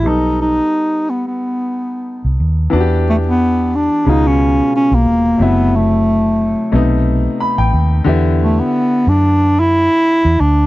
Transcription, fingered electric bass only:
X:1
M:4/4
L:1/16
Q:"Swing 16ths" 1/4=90
K:Em
V:1 name="Fingered electric bass" clef=bass
B,,,4 z8 z C,, ^D,,2 | E,,6- E,, z ^C,,4 z B,,, ^D,,,2 | F,,,6- F,,, z B,,,4 z A,,, ^D,,2 | E,,4 z2 F,,4- F,, z2 E,, D,,2 |]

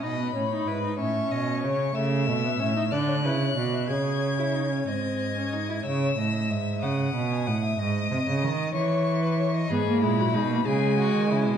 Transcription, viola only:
X:1
M:6/8
L:1/16
Q:3/8=62
K:A
V:1 name="Viola"
^D B, C D E D C6 | [K:C#m] A,3 B, C D =D2 E2 F2 | G3 E D C ^B,3 C D E | z12 |
z12 | B, ^A, G, F, G, A, G,6 |]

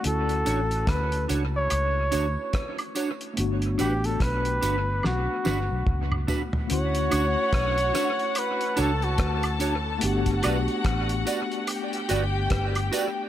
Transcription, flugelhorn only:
X:1
M:4/4
L:1/16
Q:"Swing 16ths" 1/4=72
K:D
V:1 name="Flugelhorn"
A4 B2 z c6 z3 | z2 G A B4 F6 z2 | c8 B2 A F3 z2 | z16 |]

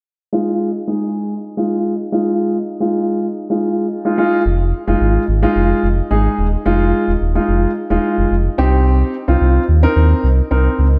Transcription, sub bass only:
X:1
M:4/4
L:1/16
Q:1/4=109
K:Fm
V:1 name="Sub bass" clef=bass
z16 | z16 | F,,,3 F,,, A,,,2 A,,,2 F,,,2 F,,,2 A,,,2 E,,,2 | F,,,3 E,,, E,,,2 F,,,2 z E,,, z F,,, F,,,2 C,,2- |
C,,3 C,, C,,2 E,,2 E,,2 C,,2 C,,2 D,,2 |]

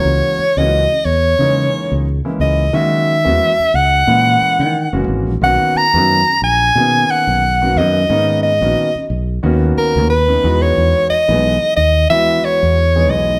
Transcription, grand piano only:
X:1
M:4/4
L:1/16
Q:"Swing 16ths" 1/4=90
K:F#mix
V:1 name="Grand piano"
[E,G,A,CF]2 z [E,G,A,CF]2 [CE] z2 [E,G,A,CD]4 z [E,G,A,CE]2 z | [F,G,A,CF]2 z [E,G,A,CF]2 [CF] z2 [E,G,A,CE]4 z [E,G,A,CF]2 z | [D,A,B,CF]2 z [D,A,B,CF]2 [CG] z2 [D,A,B,CG]4 z [D,A,B,CF]2 z | [D,A,B,CD]2 z [D,A,B,CF]2 [CF] z2 [D,A,B,CF]4 z [D,A,B,CD] [E,G,B,DF]2- |
[E,G,B,DF]2 z [E,G,B,DG]2 [DG] z2 [E,G,B,EF]4 z [E,G,B,DG]2 z |]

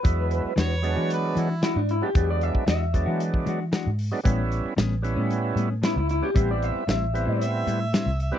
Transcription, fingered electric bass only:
X:1
M:4/4
L:1/16
Q:1/4=114
K:A
V:1 name="Fingered electric bass" clef=bass
E,,3 z E,,3 E,3 E,2 z G,,2 z | E,,3 z E,,3 E,3 E,2 z G,,2 z | A,,,3 z A,,,3 A,,3 A,,2 z C,,2 z | A,,,3 z A,,,3 A,,3 A,,2 z =C,,2 z |]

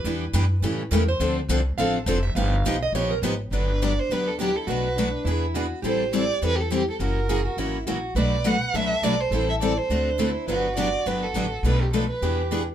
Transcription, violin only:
X:1
M:4/4
L:1/16
Q:"Swing" 1/4=207
K:Gmix
V:1 name="Violin"
z16 | z16 | z16 | [K:G] B4 d2 c2 B2 A2 G2 A2 |
B8 z8 | c4 d4 B3/2 G/2 A2 G2 A2 | ^A8 z8 | d4 f4 e4 d2 c2- |
c2 e2 d2 c8 z2 | B4 d4 B2 A4 z2 | B2 G2 A2 B6 z4 |]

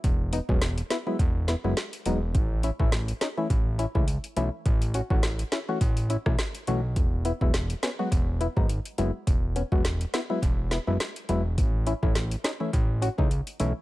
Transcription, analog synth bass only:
X:1
M:4/4
L:1/16
Q:"Swing 16ths" 1/4=104
K:E
V:1 name="Analog synth bass" clef=bass
E,,,3 E,,,3 z2 E,,,3 F,,, z2 E,,,2 | A,,,3 A,,,3 z2 A,,,3 C,,2 z B,,, z | A,,,3 A,,,3 z2 A,,,3 B,,, z2 B,,,2 | E,,,3 E,,,3 z2 E,,,3 G,,,2 z F,,, z |
E,,,3 E,,,3 z2 E,,,3 F,,, z2 E,,,2 | A,,,3 A,,,3 z2 A,,,3 C,,2 z B,,, z |]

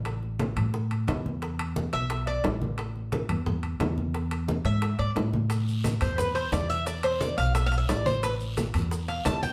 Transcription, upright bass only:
X:1
M:4/4
L:1/8
Q:1/4=176
K:Am
V:1 name="Upright bass" clef=bass
A,,,3 A,,3 E,,2- | E,,3 B,,,3 A,,,2- | A,,,3 E,,3 E,,2- | E,,3 ^G,,2 G,, A,,2- |
A,,3 E,,3 E,,2- | E,,3 B,,,3 A,,,2- | A,,,3 E,,3 E,,2 |]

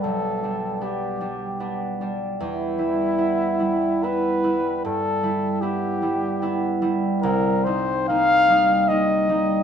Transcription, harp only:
X:1
M:3/4
L:1/8
Q:1/4=75
K:Em
V:1 name="Harp"
[B,,,G,B,D] [G,D] [B,D] [G,D] [B,D] [G,D] | E,, [G,E] [B,E] [G,E] [B,E] [G,E] | G,, [G,E] [B,E] [G,E] [B,E] [G,E] | [K:Cdor] C,, [G,E] [B,E] [G,E] [B,E] [G,E] |]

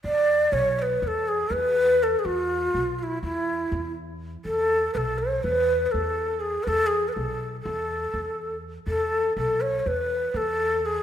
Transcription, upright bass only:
X:1
M:9/8
L:1/8
Q:3/8=82
K:none
V:1 name="Upright bass" clef=bass
E,,2 B,,,2 E,,2 E,,3 | E,,2 B,,,2 E,,2 E,,3 | E,,2 B,,,2 E,,2 E,,3 | E,,2 B,,,2 E,,2 E,,3 |
E,,2 B,,,2 E,,2 E,,3 |]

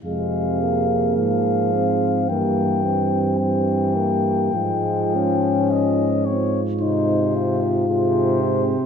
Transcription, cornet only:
X:1
M:4/4
L:1/8
Q:1/4=54
K:Fm
V:1 name="Cornet"
f2 f2 g2 g2- | g2 e d c2 c2 |]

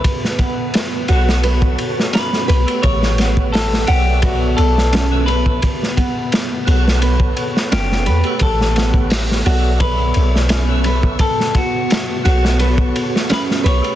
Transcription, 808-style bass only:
X:1
M:4/4
L:1/8
Q:1/4=86
K:Glyd
V:1 name="808-style bass" clef=bass
z3 B,,,2 z2 B,,, | A,,,3 B,,,2 B,,,3 | z3 B,,,2 z F,,, E,, | A,,,3 B,,,2 B,,,3 |
z3 B,,,2 z2 B,,, |]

